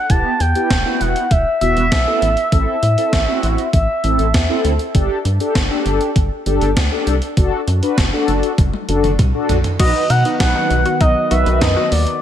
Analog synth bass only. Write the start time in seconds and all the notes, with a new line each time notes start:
0.10 E1
0.40 E2
0.70 E1
1.01 E1
1.31 E1
1.61 E1
1.77 E1
1.92 B1
2.22 A1
2.52 A1
2.83 A2
3.13 A1
3.43 A1
3.73 A1
4.04 A1
4.19 A1
4.34 E2
4.64 D2
4.95 G1
5.25 G2
5.55 G1
5.86 G1
6.16 G1
6.46 G1
6.61 G1
6.77 D2
7.07 C2
7.37 F#1
7.67 F#2
7.98 F#1
8.28 F#1
8.58 F#1
8.89 F#1
9.04 F#1
9.19 C2
9.49 B1
9.80 B1
10.10 B2
10.40 B1
10.70 B1
11.01 B1
11.31 B1
11.46 B1
11.61 F#2
11.92 D#2